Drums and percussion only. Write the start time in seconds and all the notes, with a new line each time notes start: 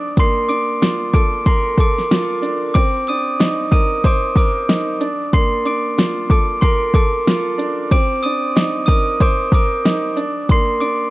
0.17 kick, closed hi-hat
0.49 closed hi-hat, shaker
0.82 snare, closed hi-hat
1.14 kick, shaker
1.46 kick, closed hi-hat
1.78 kick, shaker
1.98 snare
2.11 snare, closed hi-hat
2.43 closed hi-hat, shaker
2.75 kick, closed hi-hat
3.07 closed hi-hat, shaker
3.40 snare, closed hi-hat
3.72 kick, shaker
4.04 kick, closed hi-hat
4.36 kick, shaker
4.69 snare, closed hi-hat
5.01 closed hi-hat, shaker
5.33 kick, closed hi-hat
5.65 closed hi-hat, shaker
5.98 snare, closed hi-hat
6.30 kick, shaker
6.62 kick, closed hi-hat
6.94 kick, shaker
7.27 snare, closed hi-hat
7.59 closed hi-hat, shaker
7.91 kick, closed hi-hat
8.24 closed hi-hat, shaker
8.57 snare, closed hi-hat
8.88 kick, shaker
9.20 kick, closed hi-hat
9.52 kick, shaker
9.86 snare, closed hi-hat
10.17 closed hi-hat, shaker
10.49 kick, closed hi-hat
10.82 closed hi-hat, shaker